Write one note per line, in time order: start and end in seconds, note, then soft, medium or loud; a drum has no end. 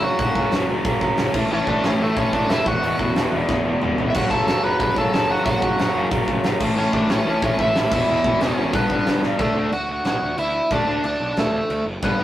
0.03 0.18 F#2 medium
0.03 0.18 C#3 medium
0.03 0.19 F#3 loud
0.03 0.65 F#4 medium
0.03 0.69 F#5 medium
0.19 0.30 F#1 loud
0.19 0.36 F#2 loud
0.19 0.36 C#3 loud
0.19 0.35 F#3 loud
0.19 kick loud
0.19 open hi-hat medium
0.35 0.46 F#1 loud
0.35 0.52 F#2 medium
0.35 0.52 C#3 medium
0.35 0.53 F#3 loud
0.35 kick medium
0.52 0.62 F#1 loud
0.52 0.69 F#2 medium
0.52 0.69 C#3 loud
0.52 0.68 F#3 loud
0.52 snare loud
0.52 open hi-hat medium
0.69 0.79 F#1 loud
0.69 0.84 F#2 medium
0.69 0.84 C#3 medium
0.69 0.85 F#3 loud
0.85 0.95 F#1 medium
0.85 1.00 F#2 loud
0.85 1.00 C#3 loud
0.85 1.00 F#3 loud
0.85 kick loud
0.85 open hi-hat medium
1.01 1.12 F#1 medium
1.01 1.16 F#2 medium
1.01 1.17 C#3 loud
1.01 1.17 F#3 loud
1.01 kick medium
1.17 1.28 F#1 loud
1.17 1.33 F#2 loud
1.17 1.34 C#3 loud
1.17 1.34 F#3 loud
1.17 snare loud
1.17 open hi-hat medium
1.34 1.44 A1 medium
1.34 1.51 A2 loud
1.34 1.51 E3 loud
1.34 1.50 A3 loud
1.34 kick loud
1.34 crash loud
1.51 1.61 A1 loud
1.51 1.67 A2 loud
1.51 1.68 E3 loud
1.51 1.68 A3 loud
1.51 1.67 C#4 medium
1.51 1.68 C#5 loud
1.67 1.77 A1 loud
1.67 1.84 A2 medium
1.67 1.85 E3 loud
1.67 1.83 A3 medium
1.67 1.83 D4 medium
1.67 1.86 D5 medium
1.67 kick medium
1.83 1.94 A1 loud
1.83 1.99 A2 medium
1.83 2.01 E3 loud
1.83 2.00 A3 loud
1.83 2.00 C#4 medium
1.83 2.02 C#5 medium
1.83 snare loud
1.83 open hi-hat medium
2.00 2.11 A1 loud
2.00 2.17 A2 loud
2.00 2.16 E3 medium
2.00 2.16 A3 loud
2.00 2.17 A3 medium
2.00 2.17 A4 medium
2.17 2.27 A1 medium
2.17 2.32 A2 medium
2.17 2.33 E3 loud
2.17 2.33 A3 loud
2.17 2.33 C#4 medium
2.17 2.34 C#5 medium
2.17 kick loud
2.17 open hi-hat medium
2.33 2.43 A1 medium
2.33 2.50 A2 loud
2.33 2.49 E3 loud
2.33 2.49 A3 loud
2.33 2.49 D4 medium
2.33 2.51 D5 medium
2.33 kick loud
2.50 2.60 F#1 loud
2.50 2.66 A2 medium
2.50 2.66 E3 medium
2.50 2.65 A3 loud
2.50 2.66 E4 medium
2.50 2.67 E5 loud
2.50 snare loud
2.50 open hi-hat medium
2.66 2.76 E1 medium
2.66 2.82 E2 loud
2.66 2.82 B2 loud
2.66 2.81 E3 loud
2.66 3.29 F#4 medium
2.66 3.32 F#5 loud
2.66 kick loud
2.82 2.93 E1 loud
2.82 2.97 E2 medium
2.82 2.98 B2 loud
2.82 2.98 E3 loud
2.82 open hi-hat medium
2.99 3.09 E1 loud
2.99 3.16 E2 loud
2.99 3.16 B2 medium
2.99 3.15 E3 medium
2.99 kick medium
3.16 3.26 E1 medium
3.16 3.32 E2 medium
3.16 3.32 B2 loud
3.16 3.33 E3 loud
3.16 snare loud
3.16 open hi-hat medium
3.33 3.43 E1 loud
3.33 3.48 E2 medium
3.33 3.48 B2 medium
3.33 3.47 E3 loud
3.49 3.59 E1 medium
3.49 3.64 E2 medium
3.49 3.65 B2 loud
3.49 3.65 E3 loud
3.49 kick loud
3.49 snare medium
3.65 3.75 E1 medium
3.65 3.82 E2 medium
3.65 3.81 B2 medium
3.65 3.81 E3 loud
3.65 high tom medium
3.82 3.92 E1 loud
3.82 3.97 E2 medium
3.82 3.97 B2 loud
3.82 3.98 E3 loud
3.82 mid tom loud
3.98 4.08 E1 medium
3.98 4.13 E2 loud
3.98 4.14 B2 medium
3.98 4.14 E3 loud
3.98 floor tom loud
4.10 4.14 E5 medium
4.15 4.25 F#1 loud
4.15 4.32 F#2 loud
4.15 4.30 C#3 loud
4.15 4.31 F#3 loud
4.15 4.30 F#4 medium
4.15 4.32 F#5 medium
4.15 kick loud
4.15 crash loud
4.30 4.41 F#1 medium
4.30 4.46 F#2 medium
4.30 4.46 C#3 medium
4.30 4.47 F#3 medium
4.30 4.46 A4 medium
4.30 4.46 A5 loud
4.30 kick medium
4.47 4.57 F#1 medium
4.47 4.63 F#2 loud
4.47 4.63 C#3 loud
4.47 4.62 F#3 loud
4.47 4.63 A4 medium
4.47 4.63 A5 loud
4.47 snare loud
4.47 open hi-hat medium
4.63 4.74 F#1 loud
4.63 4.78 F#2 medium
4.63 4.79 C#3 medium
4.63 4.79 F#3 loud
4.63 4.79 B4 medium
4.63 4.79 B5 loud
4.80 4.90 F#1 medium
4.80 4.97 F#2 loud
4.80 4.97 C#3 loud
4.80 4.96 F#3 loud
4.80 4.96 B4 medium
4.80 4.98 B5 loud
4.80 kick loud
4.80 open hi-hat medium
4.96 5.07 F#1 medium
4.96 5.12 F#2 medium
4.96 5.12 C#3 medium
4.96 5.13 F#3 loud
4.96 5.13 A4 medium
4.96 5.13 A5 medium
4.96 kick medium
5.13 5.33 F#1 loud
5.13 5.29 F#2 medium
5.13 5.28 C#3 loud
5.13 5.28 F#3 loud
5.13 5.29 A4 medium
5.13 5.31 A5 medium
5.13 snare loud
5.13 open hi-hat medium
5.29 5.44 F#2 medium
5.29 5.44 C#3 medium
5.29 5.45 F#3 loud
5.29 5.45 F#4 medium
5.29 5.44 F#5 medium
5.45 5.56 F#1 loud
5.45 5.62 F#2 loud
5.45 5.61 C#3 loud
5.45 5.60 F#3 loud
5.45 6.07 F#4 medium
5.45 6.07 F#5 medium
5.45 kick loud
5.45 open hi-hat medium
5.62 5.72 F#1 medium
5.62 5.77 F#2 medium
5.62 5.77 C#3 loud
5.62 5.78 F#3 loud
5.62 kick loud
5.78 5.89 F#1 loud
5.78 5.94 F#2 loud
5.78 5.93 C#3 loud
5.78 5.93 F#3 loud
5.78 snare loud
5.78 open hi-hat medium
5.94 6.05 F#1 loud
5.94 6.10 F#2 medium
5.94 6.11 C#3 medium
5.94 6.11 F#3 medium
6.11 6.22 F#1 medium
6.11 6.28 F#2 loud
6.11 6.28 C#3 loud
6.11 6.27 F#3 loud
6.11 kick loud
6.11 open hi-hat medium
6.28 6.38 F#1 medium
6.28 6.43 F#2 medium
6.28 6.44 C#3 medium
6.28 6.44 F#3 loud
6.28 kick medium
6.44 6.55 F#1 loud
6.44 6.60 F#2 loud
6.44 6.60 C#3 medium
6.44 6.60 F#3 loud
6.44 snare loud
6.44 open hi-hat medium
6.60 6.71 A1 medium
6.60 6.77 A2 loud
6.60 6.76 E3 loud
6.60 6.76 A3 loud
6.60 kick loud
6.60 crash loud
6.77 6.87 A1 loud
6.77 6.92 A2 medium
6.77 6.92 E3 loud
6.77 6.93 A3 loud
6.77 6.93 C#4 medium
6.77 6.93 C#5 medium
6.93 7.03 A1 loud
6.93 7.09 A2 medium
6.93 7.09 E3 loud
6.93 7.09 A3 medium
6.93 7.09 D4 medium
6.93 7.10 D5 loud
6.93 kick medium
7.09 7.20 A1 loud
7.09 7.25 A2 medium
7.09 7.25 E3 loud
7.09 7.26 A3 loud
7.09 7.41 C#4 medium
7.09 7.42 C#5 medium
7.09 snare loud
7.09 open hi-hat medium
7.26 7.36 A1 medium
7.26 7.43 A2 medium
7.26 7.42 E3 medium
7.26 7.42 A3 medium
7.42 7.52 A1 medium
7.42 7.58 A2 medium
7.42 7.58 E3 loud
7.42 7.59 A3 loud
7.42 7.59 C#4 medium
7.42 7.60 C#5 loud
7.42 kick loud
7.42 open hi-hat medium
7.59 7.69 A1 medium
7.59 7.75 A2 loud
7.59 7.75 E3 loud
7.59 7.74 A3 loud
7.59 7.90 E4 medium
7.59 7.92 E5 loud
7.59 kick medium
7.75 7.85 A1 loud
7.75 7.91 A2 medium
7.75 7.91 E3 loud
7.75 7.91 A3 loud
7.75 snare loud
7.75 open hi-hat medium
7.91 8.02 E1 medium
7.91 8.08 E2 loud
7.91 8.07 B2 loud
7.91 8.07 E3 loud
7.91 8.39 E4 medium
7.91 8.43 E5 loud
7.91 kick loud
7.91 crash loud
8.08 8.18 E1 loud
8.08 8.24 E2 medium
8.08 8.24 B2 loud
8.08 8.25 E3 loud
8.24 8.34 E1 medium
8.24 8.41 E2 medium
8.24 8.40 B2 medium
8.24 8.40 E3 loud
8.24 kick medium
8.41 8.51 E1 medium
8.41 8.57 E2 medium
8.41 8.57 B2 loud
8.41 8.57 E3 loud
8.41 8.72 C#4 medium
8.41 8.75 C#5 medium
8.41 snare loud
8.41 open hi-hat medium
8.57 8.73 G#1 loud
8.57 8.73 E2 medium
8.57 8.73 B2 medium
8.57 8.74 E3 loud
8.73 8.84 G1 medium
8.73 8.90 G2 loud
8.73 8.89 D3 loud
8.73 8.89 G3 loud
8.73 9.20 B3 soft
8.73 9.20 B4 medium
8.73 kick loud
8.73 open hi-hat medium
8.90 9.00 G1 medium
8.90 9.05 G2 medium
8.90 9.06 D3 medium
8.90 9.06 G3 loud
8.90 kick medium
9.06 9.17 G1 medium
9.06 9.23 G2 medium
9.06 9.22 D3 loud
9.06 9.22 G3 loud
9.06 snare loud
9.06 open hi-hat medium
9.23 9.33 G1 medium
9.23 9.39 G2 medium
9.23 9.38 D3 medium
9.23 9.39 G3 loud
9.23 snare medium
9.39 9.50 D2 medium
9.39 9.52 D3 loud
9.39 9.53 A3 medium
9.39 9.71 A3 medium
9.39 9.53 D4 loud
9.39 9.73 A4 medium
9.39 kick loud
9.39 crash medium
9.55 9.67 D2 medium
9.55 9.69 D3 medium
9.55 9.69 A3 medium
9.55 9.69 D4 loud
9.72 9.83 D2 medium
9.72 10.03 F#4 medium
9.72 10.05 F#5 medium
9.72 crash medium
9.89 10.00 D2 medium
10.05 10.16 B1 medium
10.05 10.36 F#4 medium
10.05 10.39 F#5 medium
10.05 snare loud
10.05 crash medium
10.21 10.33 D2 medium
10.37 10.60 D2 medium
10.37 10.69 E4 medium
10.37 10.73 E5 loud
10.37 crash medium
10.71 10.82 D2 loud
10.71 10.84 D3 medium
10.71 10.85 A3 loud
10.71 10.85 D4 loud
10.71 11.02 D4 medium
10.71 11.05 D5 medium
10.71 kick loud
10.71 crash medium
10.87 10.99 D2 medium
10.87 11.01 D3 loud
10.87 11.01 A3 medium
10.87 11.01 D4 loud
11.04 11.15 D2 medium
11.04 11.36 D4 medium
11.04 11.39 D5 medium
11.04 crash medium
11.20 11.31 B1 medium
11.37 11.59 D2 medium
11.37 11.84 A3 medium
11.37 11.84 A4 medium
11.37 snare loud
11.37 crash medium
11.70 11.81 D2 loud
11.70 crash medium
11.86 11.97 F#1 medium
12.02 12.14 G1 medium
12.02 12.16 G2 loud
12.02 12.16 D3 loud
12.02 12.16 G3 loud
12.02 12.24 B3 medium
12.02 12.24 B4 loud
12.02 kick loud
12.02 crash medium
12.19 12.24 G1 medium
12.19 12.24 G2 medium
12.19 12.24 D3 loud
12.19 12.24 G3 loud